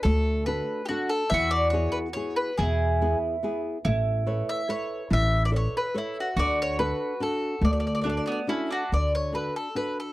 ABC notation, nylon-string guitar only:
X:1
M:3/4
L:1/8
Q:1/4=142
K:D
V:1 name="Nylon-string guitar"
A,2 [DFA]2 [DFA]2 | E,2 [B,E^G]2 [B,EG]2 | B,,2 [B,E^G]2 [B,EG]2 | A,2 [ABc]2 [ABc]2 |
E,2 [ABc]2 [ABc]2 | D,2 [DFA]2 [DFA]2 | A,2 [DFA]2 [DFA]2 | D,2 [DFA]2 [DFA]2 |]